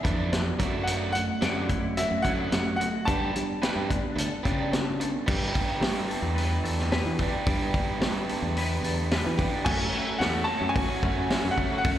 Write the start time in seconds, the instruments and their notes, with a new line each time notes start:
Already playing: clean electric guitar G#4 D5, upright piano E5
0.03 fingered electric bass F2, overdriven electric guitar E3 B3 D4, clean electric guitar D4, kick, closed hi-hat
0.31 overdriven electric guitar E3 B3, clean electric guitar B3, snare, closed hi-hat
0.59 fingered electric bass F#2, overdriven electric guitar F#3 A3 D4, clean electric guitar F#3, kick, closed hi-hat
0.83 overdriven electric guitar F#3 A3 D4, clean electric guitar F#3, upright piano F#5, closed hi-hat
1.12 overdriven electric guitar F#3 A3, upright piano F#5, closed hi-hat
1.41 fingered electric bass F#2, overdriven electric guitar F#3 A3 D4, clean electric guitar D5, snare, closed hi-hat
1.69 overdriven electric guitar F#3 A3, clean electric guitar E4, kick, closed hi-hat
1.97 overdriven electric guitar F#3 A3, clean electric guitar F#4, upright piano E5, closed hi-hat
2.11 fingered electric bass F#2
2.22 fingered electric bass F#2, overdriven electric guitar F#3 A3 D4, clean electric guitar E4, upright piano F#5, kick, closed hi-hat
2.51 fingered electric bass F#2, overdriven electric guitar F#3 A3, clean electric guitar A3, snare, closed hi-hat
2.76 overdriven electric guitar F#3 A3, clean electric guitar F#4, upright piano F#5
2.81 closed hi-hat
3.05 fingered electric bass G2, clean electric guitar G3, overdriven electric guitar B3 D4 G4, upright piano A5, kick, closed hi-hat
3.35 fingered electric bass G3, overdriven electric guitar B3 D4, closed hi-hat
3.62 overdriven electric guitar B3 D4 G4, clean electric guitar B4, snare, closed hi-hat
3.76 fingered electric bass G2
3.89 overdriven electric guitar B3 D4, clean electric guitar D4, kick, closed hi-hat
4.16 fingered electric bass D2, overdriven electric guitar B3 D4, clean electric guitar A4, closed hi-hat
4.43 fingered electric bass C#3, overdriven electric guitar B3 D4 G4, clean electric guitar D4, kick, closed hi-hat
4.71 clean electric guitar A3, overdriven electric guitar B3 D4, snare, closed hi-hat
5.00 overdriven electric guitar B3 D4, clean electric guitar A4, closed hi-hat
5.26 fingered electric bass G2, clean electric guitar G3, overdriven electric guitar B3 D4 G4, kick, crash
5.55 kick, open hi-hat
5.81 fingered electric bass G3, clean electric guitar A3, snare, open hi-hat
6.09 clean electric guitar A4, open hi-hat
6.22 fingered electric bass E2
6.35 clean electric guitar B4, open hi-hat
6.64 fingered electric bass E2, clean electric guitar A4, open hi-hat
6.79 snare
6.91 clean electric guitar B4, snare, open hi-hat
7.05 fingered electric bass E3
7.19 overdriven electric guitar B3 D4 G4, clean electric guitar D4, kick, open hi-hat
7.46 fingered electric bass G2, clean electric guitar G3, overdriven electric guitar B3 D4 G4, kick, open hi-hat
7.74 kick, open hi-hat
8.01 fingered electric bass G3, clean electric guitar A3, snare, open hi-hat
8.29 clean electric guitar A4, open hi-hat
8.42 fingered electric bass E2
8.57 clean electric guitar B4, open hi-hat
8.83 fingered electric bass E2, clean electric guitar A4, open hi-hat
9.11 clean electric guitar B4, snare, open hi-hat
9.26 fingered electric bass E3
9.38 overdriven electric guitar B3 D4 G4, clean electric guitar D4, kick, open hi-hat
9.65 fingered electric bass F#2, clean electric guitar F#3 A3 C#4 F#4, overdriven electric guitar A3, upright piano G#5, kick, crash
9.93 clean electric guitar F#3 A3 C#4 F#4, overdriven electric guitar A3
10.06 clean electric guitar A3 C#4 F#4
10.18 fingered electric bass E2, clean electric guitar F#3 A3 C#4, overdriven electric guitar A3, upright piano F#5, snare, open hi-hat
10.22 clean electric guitar F#4
10.44 clean electric guitar F#3 A3, overdriven electric guitar C#4, upright piano A5
10.49 clean electric guitar C#4 F#4
10.61 fingered electric bass F#2
10.69 upright piano G#5
10.74 clean electric guitar F#3 A3 C#4 F#4, overdriven electric guitar F#4, kick, open hi-hat
10.88 clean electric guitar A3 C#4 F#4
11.02 fingered electric bass F#2, clean electric guitar F#3 A3 C#4 F#4, overdriven electric guitar A3, kick
11.16 clean electric guitar A3 C#4 F#4
11.29 clean electric guitar F#3 A3 C#4 F#4, overdriven electric guitar A3, snare, open hi-hat
11.45 fingered electric bass F#2
11.51 upright piano F#5
11.56 clean electric guitar F#3 A3 C#4 F#4, overdriven electric guitar A3, kick
11.70 clean electric guitar A3 C#4 F#4
11.78 upright piano F#5
11.83 fingered electric bass F#2, clean electric guitar F#3 A3 C#4 F#4, overdriven electric guitar A3, kick, open hi-hat